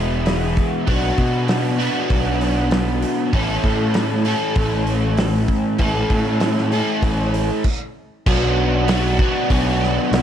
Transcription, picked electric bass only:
0.00 0.58 E1 loud
0.88 1.11 B1 medium
1.18 1.88 B2 medium
2.10 3.03 B1 loud
3.33 3.57 A1 medium
3.64 4.34 A2 medium
4.56 5.50 A1 loud
5.80 6.03 A1 loud
6.10 6.80 A2 medium
7.02 7.49 A1 loud
8.27 9.20 B1 loud
9.50 9.97 B1 loud
10.12 10.22 B1 loud

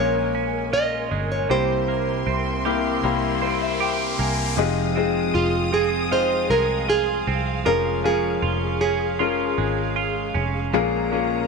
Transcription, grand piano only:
0.00 1.52 A#2 medium
0.00 1.52 F3 medium
0.00 1.50 A#3 medium
0.00 1.53 C#4 medium
0.00 1.53 F4 medium
0.00 1.53 G#4 medium
0.00 1.53 A#4 medium
1.50 2.62 C3 medium
1.50 2.62 G3 medium
1.50 2.60 A#3 medium
1.50 2.60 C4 medium
1.50 2.60 E4 medium
1.50 2.60 G4 medium
2.65 3.02 A#3 medium
2.65 3.02 C4 medium
2.65 3.02 E4 medium
2.65 3.02 A#4 medium
3.04 4.51 G3 medium
3.04 4.50 A#3 medium
3.04 4.50 C4 medium
3.04 4.51 E4 medium
3.43 3.61 C5 medium
3.62 3.80 E5 medium
3.81 4.17 G5 medium
4.20 4.55 G#5 medium
4.58 5.69 C3 medium
4.58 4.94 G#3 medium
4.58 4.94 C4 medium
4.58 4.95 D#4 medium
4.58 4.95 F4 medium
4.58 4.95 G#4 medium
4.97 6.06 G#3 medium
4.97 6.06 C4 medium
4.97 6.06 D#4 medium
4.97 6.06 F4 medium
4.97 6.06 G#4 medium
6.11 7.58 G#3 medium
6.11 7.58 C4 medium
6.11 7.58 D#4 medium
6.11 7.58 F4 medium
6.11 7.58 G#4 medium
7.66 8.02 F3 medium
7.66 8.02 G#3 medium
7.66 8.03 C#4 medium
7.66 8.03 F4 medium
7.66 8.03 G#4 medium
8.05 9.14 F3 medium
8.05 9.14 G#3 medium
8.05 9.14 C#4 medium
8.05 9.14 F4 medium
8.05 9.14 A#4 medium
9.20 10.66 F3 medium
9.20 10.66 G#3 medium
9.20 10.66 C#4 medium
9.20 10.66 F4 medium
9.20 10.66 A#4 medium
10.74 11.47 A#2 medium
10.74 11.47 F3 medium
10.74 11.10 G#3 medium
10.74 11.10 A#3 medium
10.74 11.10 C#4 medium
10.74 11.10 F4 medium
10.74 11.10 G#4 loud
11.12 11.47 G#3 medium
11.12 11.47 A#3 medium
11.12 11.47 C#4 medium
11.12 11.47 F4 medium
11.12 11.47 G#4 medium

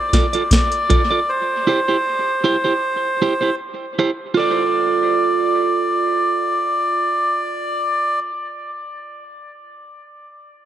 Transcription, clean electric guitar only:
0.14 0.25 F4 medium
0.14 0.25 A4 medium
0.14 0.26 D5 medium
0.33 0.42 F4 medium
0.33 0.42 A4 medium
0.33 0.41 D5 medium
0.90 1.01 F4 medium
0.90 1.02 A4 medium
0.90 1.02 D5 medium
1.11 1.19 F4 medium
1.11 1.19 A4 medium
1.11 1.19 D5 medium
1.67 1.79 E4 medium
1.67 1.79 G4 loud
1.67 1.80 C5 loud
1.88 1.96 E4 medium
1.88 1.96 G4 medium
1.88 1.96 C5 medium
2.44 2.56 E4 medium
2.44 2.56 G4 medium
2.44 2.56 C5 medium
2.64 2.73 E4 soft
2.64 2.73 G4 medium
2.64 2.72 C5 medium
3.22 3.33 E4 medium
3.22 3.33 G4 medium
3.22 3.33 C5 medium
3.41 3.50 E4 soft
3.41 3.50 G4 medium
3.41 3.49 C5 medium
3.99 4.10 E4 medium
3.99 4.10 G4 medium
3.99 4.10 C5 medium
4.34 8.31 F4 medium
4.34 8.34 A4 medium
4.39 8.36 D5 medium

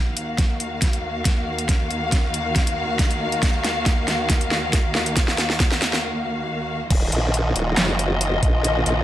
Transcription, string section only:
0.00 6.87 D#2 medium
0.00 6.87 D#3 medium
0.00 6.87 A#3 medium
0.00 6.87 F#4 medium
0.00 6.87 F5 medium
6.91 9.04 D#3 medium
6.91 9.04 A#3 medium
6.91 9.04 F4 medium
6.91 9.04 F#4 medium
6.91 9.04 D#5 medium

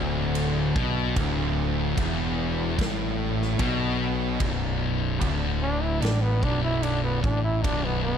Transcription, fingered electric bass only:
0.00 0.71 D1 loud
0.76 1.13 B1 loud
1.17 1.93 D1 loud
1.98 2.74 E1 loud
2.79 3.55 A1 loud
3.59 4.36 B1 medium
4.40 5.17 B0 medium
5.22 5.98 D1 loud
6.03 6.40 A1 medium
6.43 7.20 B0 loud
7.24 7.62 A1 medium
7.64 8.18 B0 loud

